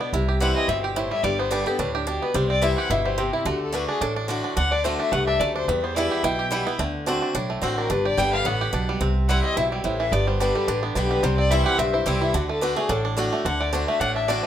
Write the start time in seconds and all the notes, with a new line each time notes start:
Already playing: B2 D3 D4
0.01 B3
0.13 C2 C3 E4
0.29 G4
0.40 E3 G3 C4 E4 F#5
0.56 E3 D#5
0.68 G1 B2 C4 E5
0.83 G4
0.95 A2 E4 C5
1.11 G3 E5
1.23 G1 G2 G3 D5
1.39 B3 C5
1.51 D3 G3 B3 D4 G4 B4
1.66 B3 G4 A4
1.79 D2 A2 D4 B4
1.94 D4 G4
2.07 B2 D4 G4
2.22 B3 B4
2.34 C2 C3 G3 C5
2.50 C4 D5
2.62 E3 G3 C4 E4 E5
2.78 G4 F#5
2.90 G1 B2 E4 E5
3.05 G3 C5
3.18 C3 C4 G4
3.33 E4
3.45 D2 D3 A3 F#4
3.61 A4
3.72 D3 A3 D4 F#4 B4
3.88 D4 G#4
4.01 A1 A2 D4 A4
4.16 D4
4.28 D3 A3 D4 F#4
4.44 D4
4.57 D2 D3 D4 F#5
4.72 D4 D5
4.84 D3 A3 D4 F#4 C5
5.00 D4 E5
5.12 C2 G2 A3 F#5
5.27 D4 E5
5.40 D2 F#2 A3 D5
5.55 D4 C5
5.68 E2 G3 B4
5.83 B3 C5
5.95 E3 G3 B3 E4 D5
6.11 G4 E5
6.23 B1 B2 E4 G5
6.39 G4
6.51 E3 G3 B3 E4
6.67 B3 E4
6.79 D2 D3 A3
7.06 D3 A3 C4 D4 F#4
7.22 D4
7.35 B1 A2 D4
7.50 A3
7.62 A1 D3 A3 C4 F#4 C5
7.77 D4 A#4
7.90 G1 G2 D4 B4
8.05 G4 D5
8.17 G1 D3 G3 B3 G4 G5
8.33 D3 F5
8.45 A1 A2 B3 F#5
8.61 G4
8.73 B1 B2 D4
8.89 G3
9.01 C2 C3 C4
9.29 E3 G3 C4 E4 F#5
9.44 C4 D#5
9.57 B1 B2 E4 E5
9.71 G3 G4
9.84 A1 A2 E4 C5
10.00 E3 E5
10.12 G1 G2 B3 D5
10.27 G3 C5
10.40 D3 G3 B3 D4 G4 B4
10.55 G3 A4
10.68 A1 D3 D4 B4
10.83 B3 D4
10.95 B1 D3 G3 B3 D4 G4
11.10 G3 B4
11.23 C2 C3 G3 C5
11.37 C4 D5
11.51 E3 G3 C4 E4 E5
11.65 G4 F#5
11.78 B1 G2 C4 E5
11.93 E4 C5
12.06 C2 E3 G3 C4 E4 G4
12.21 E4
12.34 D2 D3 D4 F#4
12.49 A3 A4
12.61 D3 A3 D4 F#4 B4
12.76 A3 D4 F#4 G#4
12.89 A1 A2 D4 A4
13.05 D4
13.17 D3 A3 D4 F#4
13.33 A3
13.45 D2 D3 D4 F#5
13.61 A3 D5
13.72 D3 A3 D4 F#4 C5
13.88 A3 E5
14.00 A1 A2 D4 F#5
14.15 D4 E5
14.28 D3 A3 D4 F#4 D5
14.43 A3 C5